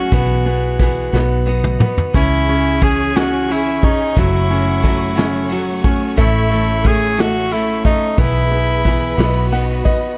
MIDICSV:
0, 0, Header, 1, 7, 480
1, 0, Start_track
1, 0, Key_signature, 4, "major"
1, 0, Tempo, 671892
1, 83, Time_signature, 6, 3, 24, 8
1, 7271, End_track
2, 0, Start_track
2, 0, Title_t, "String section"
2, 0, Program_c, 0, 48
2, 1537, Note_on_c, 0, 80, 64
2, 1539, Note_on_c, 0, 73, 64
2, 1539, Note_on_c, 0, 85, 78
2, 1541, Note_on_c, 0, 68, 70
2, 2966, Note_off_c, 0, 80, 0
2, 2968, Note_off_c, 0, 68, 0
2, 2978, Note_on_c, 0, 78, 65
2, 2982, Note_on_c, 0, 57, 74
2, 4396, Note_off_c, 0, 78, 0
2, 5815, Note_off_c, 0, 57, 0
2, 5816, Note_off_c, 0, 73, 0
2, 5817, Note_off_c, 0, 85, 0
2, 5848, Note_on_c, 0, 68, 65
2, 5848, Note_on_c, 0, 83, 77
2, 5850, Note_on_c, 0, 71, 68
2, 6553, Note_off_c, 0, 68, 0
2, 6565, Note_on_c, 0, 75, 62
2, 6568, Note_on_c, 0, 66, 68
2, 7268, Note_off_c, 0, 83, 0
2, 7269, Note_off_c, 0, 71, 0
2, 7271, Note_off_c, 0, 66, 0
2, 7271, Note_off_c, 0, 75, 0
2, 7271, End_track
3, 0, Start_track
3, 0, Title_t, "Tenor saxophone"
3, 0, Program_c, 1, 66
3, 0, Note_on_c, 1, 66, 89
3, 1043, Note_off_c, 1, 66, 0
3, 1539, Note_on_c, 1, 64, 91
3, 2021, Note_on_c, 1, 68, 102
3, 2032, Note_off_c, 1, 64, 0
3, 2262, Note_on_c, 1, 66, 89
3, 2273, Note_off_c, 1, 68, 0
3, 2511, Note_on_c, 1, 64, 89
3, 2522, Note_off_c, 1, 66, 0
3, 2745, Note_on_c, 1, 63, 80
3, 2756, Note_off_c, 1, 64, 0
3, 2995, Note_on_c, 1, 64, 83
3, 3005, Note_off_c, 1, 63, 0
3, 3941, Note_off_c, 1, 64, 0
3, 4429, Note_on_c, 1, 64, 93
3, 4907, Note_on_c, 1, 68, 98
3, 4918, Note_off_c, 1, 64, 0
3, 5146, Note_on_c, 1, 66, 104
3, 5156, Note_off_c, 1, 68, 0
3, 5373, Note_on_c, 1, 64, 92
3, 5384, Note_off_c, 1, 66, 0
3, 5607, Note_off_c, 1, 64, 0
3, 5611, Note_on_c, 1, 63, 91
3, 5849, Note_on_c, 1, 64, 100
3, 5860, Note_off_c, 1, 63, 0
3, 6801, Note_off_c, 1, 64, 0
3, 7271, End_track
4, 0, Start_track
4, 0, Title_t, "Clean electric guitar"
4, 0, Program_c, 2, 27
4, 0, Note_on_c, 2, 54, 49
4, 0, Note_on_c, 2, 57, 47
4, 0, Note_on_c, 2, 61, 53
4, 0, Note_on_c, 2, 68, 52
4, 81, Note_off_c, 2, 68, 0
4, 82, Note_on_c, 2, 47, 87
4, 87, Note_off_c, 2, 61, 0
4, 88, Note_off_c, 2, 54, 0
4, 89, Note_off_c, 2, 57, 0
4, 91, Note_on_c, 2, 52, 88
4, 92, Note_on_c, 2, 59, 84
4, 96, Note_on_c, 2, 64, 92
4, 100, Note_on_c, 2, 68, 80
4, 313, Note_off_c, 2, 68, 0
4, 322, Note_on_c, 2, 68, 58
4, 324, Note_off_c, 2, 47, 0
4, 325, Note_off_c, 2, 64, 0
4, 328, Note_off_c, 2, 52, 0
4, 329, Note_off_c, 2, 59, 0
4, 333, Note_on_c, 2, 64, 57
4, 346, Note_on_c, 2, 59, 49
4, 564, Note_off_c, 2, 68, 0
4, 566, Note_off_c, 2, 59, 0
4, 566, Note_on_c, 2, 52, 64
4, 570, Note_off_c, 2, 64, 0
4, 574, Note_on_c, 2, 59, 71
4, 583, Note_on_c, 2, 64, 66
4, 590, Note_on_c, 2, 68, 73
4, 801, Note_off_c, 2, 68, 0
4, 803, Note_off_c, 2, 59, 0
4, 803, Note_on_c, 2, 66, 71
4, 805, Note_off_c, 2, 64, 0
4, 807, Note_off_c, 2, 52, 0
4, 808, Note_on_c, 2, 63, 65
4, 812, Note_on_c, 2, 59, 63
4, 817, Note_on_c, 2, 47, 59
4, 817, Note_on_c, 2, 54, 61
4, 1032, Note_off_c, 2, 54, 0
4, 1039, Note_off_c, 2, 59, 0
4, 1041, Note_on_c, 2, 54, 69
4, 1046, Note_off_c, 2, 66, 0
4, 1048, Note_off_c, 2, 63, 0
4, 1048, Note_on_c, 2, 59, 69
4, 1053, Note_off_c, 2, 47, 0
4, 1056, Note_on_c, 2, 63, 80
4, 1064, Note_on_c, 2, 66, 80
4, 1270, Note_off_c, 2, 66, 0
4, 1279, Note_on_c, 2, 66, 62
4, 1283, Note_off_c, 2, 63, 0
4, 1286, Note_off_c, 2, 54, 0
4, 1289, Note_off_c, 2, 59, 0
4, 1292, Note_on_c, 2, 63, 51
4, 1306, Note_on_c, 2, 59, 49
4, 1525, Note_on_c, 2, 49, 72
4, 1526, Note_off_c, 2, 66, 0
4, 1532, Note_off_c, 2, 63, 0
4, 1533, Note_on_c, 2, 52, 78
4, 1535, Note_off_c, 2, 59, 0
4, 1538, Note_on_c, 2, 61, 85
4, 1539, Note_on_c, 2, 64, 80
4, 1543, Note_on_c, 2, 68, 82
4, 1756, Note_off_c, 2, 68, 0
4, 1764, Note_on_c, 2, 68, 43
4, 1767, Note_off_c, 2, 64, 0
4, 1769, Note_off_c, 2, 49, 0
4, 1773, Note_off_c, 2, 52, 0
4, 1776, Note_off_c, 2, 61, 0
4, 1776, Note_on_c, 2, 64, 43
4, 1787, Note_on_c, 2, 61, 44
4, 2004, Note_off_c, 2, 61, 0
4, 2005, Note_on_c, 2, 52, 60
4, 2010, Note_off_c, 2, 68, 0
4, 2011, Note_off_c, 2, 64, 0
4, 2012, Note_on_c, 2, 61, 64
4, 2019, Note_on_c, 2, 64, 58
4, 2031, Note_on_c, 2, 68, 68
4, 2242, Note_off_c, 2, 68, 0
4, 2246, Note_off_c, 2, 64, 0
4, 2251, Note_off_c, 2, 52, 0
4, 2251, Note_on_c, 2, 68, 68
4, 2254, Note_off_c, 2, 61, 0
4, 2255, Note_on_c, 2, 64, 64
4, 2262, Note_on_c, 2, 61, 56
4, 2263, Note_on_c, 2, 52, 59
4, 2265, Note_on_c, 2, 49, 53
4, 2483, Note_off_c, 2, 52, 0
4, 2492, Note_on_c, 2, 52, 68
4, 2493, Note_off_c, 2, 61, 0
4, 2494, Note_off_c, 2, 68, 0
4, 2496, Note_off_c, 2, 64, 0
4, 2501, Note_off_c, 2, 49, 0
4, 2502, Note_on_c, 2, 61, 63
4, 2508, Note_on_c, 2, 64, 74
4, 2518, Note_on_c, 2, 68, 72
4, 2723, Note_off_c, 2, 68, 0
4, 2731, Note_on_c, 2, 68, 52
4, 2735, Note_off_c, 2, 52, 0
4, 2740, Note_off_c, 2, 61, 0
4, 2743, Note_off_c, 2, 64, 0
4, 2755, Note_on_c, 2, 61, 48
4, 2970, Note_on_c, 2, 42, 70
4, 2974, Note_off_c, 2, 68, 0
4, 2977, Note_off_c, 2, 61, 0
4, 2978, Note_on_c, 2, 49, 79
4, 2982, Note_on_c, 2, 54, 76
4, 2984, Note_on_c, 2, 57, 84
4, 2985, Note_on_c, 2, 61, 89
4, 2989, Note_on_c, 2, 66, 94
4, 3200, Note_off_c, 2, 66, 0
4, 3208, Note_on_c, 2, 66, 50
4, 3211, Note_off_c, 2, 61, 0
4, 3214, Note_off_c, 2, 42, 0
4, 3217, Note_off_c, 2, 49, 0
4, 3219, Note_off_c, 2, 54, 0
4, 3219, Note_off_c, 2, 57, 0
4, 3220, Note_on_c, 2, 61, 51
4, 3228, Note_on_c, 2, 57, 41
4, 3232, Note_on_c, 2, 54, 41
4, 3434, Note_off_c, 2, 54, 0
4, 3442, Note_off_c, 2, 57, 0
4, 3442, Note_on_c, 2, 54, 56
4, 3451, Note_on_c, 2, 57, 71
4, 3452, Note_off_c, 2, 61, 0
4, 3452, Note_off_c, 2, 66, 0
4, 3460, Note_on_c, 2, 61, 66
4, 3467, Note_on_c, 2, 66, 65
4, 3673, Note_off_c, 2, 66, 0
4, 3677, Note_off_c, 2, 61, 0
4, 3678, Note_off_c, 2, 57, 0
4, 3681, Note_off_c, 2, 54, 0
4, 3681, Note_on_c, 2, 66, 67
4, 3685, Note_on_c, 2, 61, 76
4, 3687, Note_on_c, 2, 57, 64
4, 3690, Note_on_c, 2, 54, 65
4, 3692, Note_on_c, 2, 49, 68
4, 3695, Note_on_c, 2, 42, 55
4, 3915, Note_off_c, 2, 54, 0
4, 3923, Note_off_c, 2, 57, 0
4, 3923, Note_on_c, 2, 54, 75
4, 3926, Note_off_c, 2, 66, 0
4, 3928, Note_off_c, 2, 61, 0
4, 3931, Note_off_c, 2, 49, 0
4, 3931, Note_on_c, 2, 57, 77
4, 3933, Note_off_c, 2, 42, 0
4, 3936, Note_on_c, 2, 61, 86
4, 3945, Note_on_c, 2, 66, 83
4, 4148, Note_off_c, 2, 66, 0
4, 4157, Note_on_c, 2, 66, 69
4, 4160, Note_off_c, 2, 61, 0
4, 4166, Note_off_c, 2, 57, 0
4, 4167, Note_off_c, 2, 54, 0
4, 4168, Note_on_c, 2, 61, 57
4, 4175, Note_on_c, 2, 57, 57
4, 4181, Note_on_c, 2, 54, 50
4, 4399, Note_on_c, 2, 45, 80
4, 4400, Note_off_c, 2, 57, 0
4, 4403, Note_off_c, 2, 61, 0
4, 4403, Note_off_c, 2, 66, 0
4, 4404, Note_on_c, 2, 52, 80
4, 4406, Note_off_c, 2, 54, 0
4, 4409, Note_on_c, 2, 57, 82
4, 4411, Note_on_c, 2, 61, 86
4, 4416, Note_on_c, 2, 64, 79
4, 4419, Note_on_c, 2, 69, 91
4, 4633, Note_off_c, 2, 69, 0
4, 4641, Note_off_c, 2, 64, 0
4, 4641, Note_on_c, 2, 69, 52
4, 4644, Note_off_c, 2, 45, 0
4, 4646, Note_off_c, 2, 52, 0
4, 4649, Note_off_c, 2, 57, 0
4, 4650, Note_off_c, 2, 61, 0
4, 4650, Note_on_c, 2, 64, 52
4, 4659, Note_on_c, 2, 61, 48
4, 4666, Note_on_c, 2, 57, 40
4, 4873, Note_off_c, 2, 57, 0
4, 4882, Note_off_c, 2, 61, 0
4, 4882, Note_on_c, 2, 57, 62
4, 4884, Note_off_c, 2, 69, 0
4, 4888, Note_off_c, 2, 64, 0
4, 4891, Note_on_c, 2, 61, 57
4, 4900, Note_on_c, 2, 64, 65
4, 5122, Note_off_c, 2, 64, 0
4, 5124, Note_off_c, 2, 57, 0
4, 5126, Note_off_c, 2, 61, 0
4, 5126, Note_on_c, 2, 69, 66
4, 5130, Note_on_c, 2, 64, 62
4, 5135, Note_on_c, 2, 61, 61
4, 5137, Note_on_c, 2, 57, 66
4, 5141, Note_on_c, 2, 45, 57
4, 5141, Note_on_c, 2, 52, 57
4, 5349, Note_off_c, 2, 57, 0
4, 5357, Note_on_c, 2, 57, 67
4, 5360, Note_off_c, 2, 61, 0
4, 5364, Note_off_c, 2, 69, 0
4, 5367, Note_off_c, 2, 64, 0
4, 5369, Note_on_c, 2, 61, 68
4, 5372, Note_off_c, 2, 45, 0
4, 5372, Note_off_c, 2, 52, 0
4, 5375, Note_on_c, 2, 64, 76
4, 5381, Note_on_c, 2, 69, 70
4, 5591, Note_off_c, 2, 69, 0
4, 5599, Note_off_c, 2, 57, 0
4, 5600, Note_on_c, 2, 69, 53
4, 5605, Note_off_c, 2, 61, 0
4, 5608, Note_off_c, 2, 64, 0
4, 5613, Note_on_c, 2, 61, 52
4, 5622, Note_on_c, 2, 57, 44
4, 5839, Note_off_c, 2, 69, 0
4, 5840, Note_on_c, 2, 47, 82
4, 5842, Note_off_c, 2, 57, 0
4, 5844, Note_on_c, 2, 52, 74
4, 5846, Note_off_c, 2, 61, 0
4, 5848, Note_on_c, 2, 59, 82
4, 5852, Note_on_c, 2, 64, 85
4, 5858, Note_on_c, 2, 68, 83
4, 6071, Note_off_c, 2, 68, 0
4, 6079, Note_off_c, 2, 47, 0
4, 6079, Note_on_c, 2, 68, 54
4, 6081, Note_off_c, 2, 52, 0
4, 6083, Note_off_c, 2, 59, 0
4, 6085, Note_off_c, 2, 64, 0
4, 6092, Note_on_c, 2, 64, 46
4, 6103, Note_on_c, 2, 59, 40
4, 6318, Note_off_c, 2, 59, 0
4, 6318, Note_off_c, 2, 68, 0
4, 6318, Note_on_c, 2, 52, 56
4, 6325, Note_off_c, 2, 64, 0
4, 6326, Note_on_c, 2, 59, 55
4, 6333, Note_on_c, 2, 64, 67
4, 6340, Note_on_c, 2, 68, 58
4, 6550, Note_off_c, 2, 68, 0
4, 6553, Note_on_c, 2, 66, 79
4, 6556, Note_off_c, 2, 59, 0
4, 6557, Note_off_c, 2, 52, 0
4, 6565, Note_off_c, 2, 64, 0
4, 6565, Note_on_c, 2, 54, 68
4, 6565, Note_on_c, 2, 59, 73
4, 6570, Note_on_c, 2, 47, 51
4, 6783, Note_off_c, 2, 54, 0
4, 6792, Note_on_c, 2, 54, 66
4, 6793, Note_off_c, 2, 59, 0
4, 6795, Note_off_c, 2, 66, 0
4, 6802, Note_on_c, 2, 59, 72
4, 6804, Note_off_c, 2, 47, 0
4, 6811, Note_on_c, 2, 63, 79
4, 6819, Note_on_c, 2, 66, 70
4, 7023, Note_off_c, 2, 66, 0
4, 7032, Note_on_c, 2, 66, 63
4, 7035, Note_off_c, 2, 54, 0
4, 7036, Note_off_c, 2, 63, 0
4, 7040, Note_off_c, 2, 59, 0
4, 7045, Note_on_c, 2, 63, 61
4, 7055, Note_on_c, 2, 59, 46
4, 7271, Note_off_c, 2, 59, 0
4, 7271, Note_off_c, 2, 63, 0
4, 7271, Note_off_c, 2, 66, 0
4, 7271, End_track
5, 0, Start_track
5, 0, Title_t, "Grand piano"
5, 0, Program_c, 3, 0
5, 0, Control_c, 3, 64, 127
5, 0, Note_on_c, 3, 54, 53
5, 0, Note_on_c, 3, 61, 57
5, 73, Note_off_c, 3, 54, 0
5, 80, Note_off_c, 3, 61, 0
5, 90, Note_on_c, 3, 59, 74
5, 92, Control_c, 3, 64, 0
5, 211, Control_c, 3, 64, 127
5, 318, Note_off_c, 3, 59, 0
5, 328, Note_on_c, 3, 59, 55
5, 569, Note_off_c, 3, 59, 0
5, 580, Note_on_c, 3, 59, 52
5, 802, Note_off_c, 3, 59, 0
5, 813, Note_on_c, 3, 59, 64
5, 814, Control_c, 3, 64, 0
5, 950, Control_c, 3, 64, 127
5, 1038, Note_off_c, 3, 59, 0
5, 1048, Note_on_c, 3, 59, 45
5, 1283, Note_off_c, 3, 59, 0
5, 1294, Note_on_c, 3, 59, 58
5, 1526, Note_off_c, 3, 59, 0
5, 1537, Note_on_c, 3, 61, 67
5, 1541, Control_c, 3, 64, 0
5, 1679, Control_c, 3, 64, 127
5, 1769, Note_off_c, 3, 61, 0
5, 1779, Note_on_c, 3, 61, 60
5, 2003, Note_off_c, 3, 61, 0
5, 2014, Note_on_c, 3, 61, 48
5, 2248, Note_off_c, 3, 61, 0
5, 2259, Note_on_c, 3, 61, 51
5, 2490, Note_off_c, 3, 61, 0
5, 2501, Note_on_c, 3, 61, 47
5, 2733, Note_off_c, 3, 61, 0
5, 2744, Note_on_c, 3, 61, 48
5, 2974, Note_off_c, 3, 61, 0
5, 2986, Control_c, 3, 64, 0
5, 2987, Note_on_c, 3, 54, 69
5, 3100, Control_c, 3, 64, 127
5, 3220, Note_on_c, 3, 61, 57
5, 3453, Note_off_c, 3, 54, 0
5, 3463, Note_on_c, 3, 54, 50
5, 3687, Note_off_c, 3, 61, 0
5, 3698, Note_on_c, 3, 61, 66
5, 3933, Note_off_c, 3, 54, 0
5, 3944, Note_on_c, 3, 54, 52
5, 4164, Note_off_c, 3, 61, 0
5, 4174, Note_on_c, 3, 61, 57
5, 4402, Note_off_c, 3, 54, 0
5, 4405, Note_off_c, 3, 61, 0
5, 4410, Note_on_c, 3, 57, 78
5, 4420, Control_c, 3, 64, 0
5, 4553, Control_c, 3, 64, 127
5, 4640, Note_off_c, 3, 57, 0
5, 4650, Note_on_c, 3, 57, 63
5, 4874, Note_off_c, 3, 57, 0
5, 4885, Note_on_c, 3, 57, 54
5, 5118, Note_off_c, 3, 57, 0
5, 5129, Note_on_c, 3, 57, 55
5, 5368, Note_off_c, 3, 57, 0
5, 5379, Note_on_c, 3, 57, 47
5, 5592, Note_off_c, 3, 57, 0
5, 5603, Note_on_c, 3, 57, 55
5, 5834, Note_off_c, 3, 57, 0
5, 5845, Note_on_c, 3, 59, 76
5, 5849, Control_c, 3, 64, 0
5, 5961, Control_c, 3, 64, 127
5, 6073, Note_off_c, 3, 59, 0
5, 6083, Note_on_c, 3, 59, 52
5, 6315, Note_off_c, 3, 59, 0
5, 6326, Note_on_c, 3, 59, 50
5, 6554, Note_off_c, 3, 59, 0
5, 6564, Note_on_c, 3, 59, 69
5, 6567, Control_c, 3, 64, 0
5, 6706, Control_c, 3, 64, 127
5, 6795, Note_off_c, 3, 59, 0
5, 6805, Note_on_c, 3, 78, 69
5, 6806, Note_on_c, 3, 59, 49
5, 7025, Note_off_c, 3, 78, 0
5, 7030, Note_off_c, 3, 59, 0
5, 7037, Note_on_c, 3, 75, 69
5, 7040, Note_on_c, 3, 59, 47
5, 7262, Note_off_c, 3, 75, 0
5, 7271, Note_off_c, 3, 59, 0
5, 7271, End_track
6, 0, Start_track
6, 0, Title_t, "Fingered electric bass"
6, 0, Program_c, 4, 33
6, 87, Note_on_c, 4, 35, 102
6, 780, Note_off_c, 4, 35, 0
6, 808, Note_on_c, 4, 35, 99
6, 1261, Note_off_c, 4, 35, 0
6, 1532, Note_on_c, 4, 37, 88
6, 2978, Note_on_c, 4, 30, 91
6, 2988, Note_off_c, 4, 37, 0
6, 4382, Note_off_c, 4, 30, 0
6, 4412, Note_on_c, 4, 33, 93
6, 5813, Note_off_c, 4, 33, 0
6, 5845, Note_on_c, 4, 35, 101
6, 6531, Note_off_c, 4, 35, 0
6, 6558, Note_on_c, 4, 35, 105
6, 7010, Note_off_c, 4, 35, 0
6, 7271, End_track
7, 0, Start_track
7, 0, Title_t, "Drums"
7, 86, Note_on_c, 9, 36, 106
7, 87, Note_on_c, 9, 51, 66
7, 157, Note_off_c, 9, 36, 0
7, 158, Note_off_c, 9, 51, 0
7, 329, Note_on_c, 9, 51, 39
7, 401, Note_off_c, 9, 51, 0
7, 568, Note_on_c, 9, 36, 82
7, 573, Note_on_c, 9, 51, 48
7, 585, Note_on_c, 9, 38, 38
7, 640, Note_off_c, 9, 36, 0
7, 644, Note_off_c, 9, 51, 0
7, 657, Note_off_c, 9, 38, 0
7, 824, Note_on_c, 9, 38, 60
7, 896, Note_off_c, 9, 38, 0
7, 1171, Note_on_c, 9, 47, 77
7, 1242, Note_off_c, 9, 47, 0
7, 1287, Note_on_c, 9, 45, 101
7, 1359, Note_off_c, 9, 45, 0
7, 1411, Note_on_c, 9, 43, 87
7, 1483, Note_off_c, 9, 43, 0
7, 1531, Note_on_c, 9, 36, 103
7, 1531, Note_on_c, 9, 51, 54
7, 1603, Note_off_c, 9, 36, 0
7, 1603, Note_off_c, 9, 51, 0
7, 1771, Note_on_c, 9, 51, 42
7, 1842, Note_off_c, 9, 51, 0
7, 2014, Note_on_c, 9, 36, 81
7, 2015, Note_on_c, 9, 51, 45
7, 2085, Note_off_c, 9, 36, 0
7, 2086, Note_off_c, 9, 51, 0
7, 2245, Note_on_c, 9, 51, 74
7, 2262, Note_on_c, 9, 38, 111
7, 2316, Note_off_c, 9, 51, 0
7, 2333, Note_off_c, 9, 38, 0
7, 2490, Note_on_c, 9, 51, 37
7, 2561, Note_off_c, 9, 51, 0
7, 2732, Note_on_c, 9, 51, 37
7, 2737, Note_on_c, 9, 36, 93
7, 2804, Note_off_c, 9, 51, 0
7, 2808, Note_off_c, 9, 36, 0
7, 2973, Note_on_c, 9, 51, 67
7, 2977, Note_on_c, 9, 36, 123
7, 3044, Note_off_c, 9, 51, 0
7, 3048, Note_off_c, 9, 36, 0
7, 3219, Note_on_c, 9, 51, 47
7, 3290, Note_off_c, 9, 51, 0
7, 3456, Note_on_c, 9, 51, 43
7, 3457, Note_on_c, 9, 36, 88
7, 3469, Note_on_c, 9, 38, 31
7, 3528, Note_off_c, 9, 36, 0
7, 3528, Note_off_c, 9, 51, 0
7, 3541, Note_off_c, 9, 38, 0
7, 3690, Note_on_c, 9, 51, 68
7, 3708, Note_on_c, 9, 38, 117
7, 3762, Note_off_c, 9, 51, 0
7, 3779, Note_off_c, 9, 38, 0
7, 3931, Note_on_c, 9, 51, 39
7, 4002, Note_off_c, 9, 51, 0
7, 4168, Note_on_c, 9, 51, 38
7, 4174, Note_on_c, 9, 36, 101
7, 4239, Note_off_c, 9, 51, 0
7, 4245, Note_off_c, 9, 36, 0
7, 4414, Note_on_c, 9, 36, 110
7, 4417, Note_on_c, 9, 51, 60
7, 4485, Note_off_c, 9, 36, 0
7, 4488, Note_off_c, 9, 51, 0
7, 4657, Note_on_c, 9, 51, 47
7, 4728, Note_off_c, 9, 51, 0
7, 4892, Note_on_c, 9, 36, 77
7, 4896, Note_on_c, 9, 51, 45
7, 4963, Note_off_c, 9, 36, 0
7, 4967, Note_off_c, 9, 51, 0
7, 5128, Note_on_c, 9, 51, 75
7, 5145, Note_on_c, 9, 38, 106
7, 5199, Note_off_c, 9, 51, 0
7, 5216, Note_off_c, 9, 38, 0
7, 5373, Note_on_c, 9, 51, 36
7, 5445, Note_off_c, 9, 51, 0
7, 5603, Note_on_c, 9, 51, 38
7, 5608, Note_on_c, 9, 36, 94
7, 5674, Note_off_c, 9, 51, 0
7, 5679, Note_off_c, 9, 36, 0
7, 5845, Note_on_c, 9, 36, 117
7, 5846, Note_on_c, 9, 51, 61
7, 5916, Note_off_c, 9, 36, 0
7, 5917, Note_off_c, 9, 51, 0
7, 6090, Note_on_c, 9, 51, 48
7, 6161, Note_off_c, 9, 51, 0
7, 6324, Note_on_c, 9, 36, 83
7, 6329, Note_on_c, 9, 51, 48
7, 6342, Note_on_c, 9, 38, 34
7, 6395, Note_off_c, 9, 36, 0
7, 6400, Note_off_c, 9, 51, 0
7, 6413, Note_off_c, 9, 38, 0
7, 6557, Note_on_c, 9, 51, 76
7, 6574, Note_on_c, 9, 38, 112
7, 6628, Note_off_c, 9, 51, 0
7, 6646, Note_off_c, 9, 38, 0
7, 6801, Note_on_c, 9, 51, 40
7, 6873, Note_off_c, 9, 51, 0
7, 7036, Note_on_c, 9, 51, 38
7, 7041, Note_on_c, 9, 36, 86
7, 7107, Note_off_c, 9, 51, 0
7, 7112, Note_off_c, 9, 36, 0
7, 7271, End_track
0, 0, End_of_file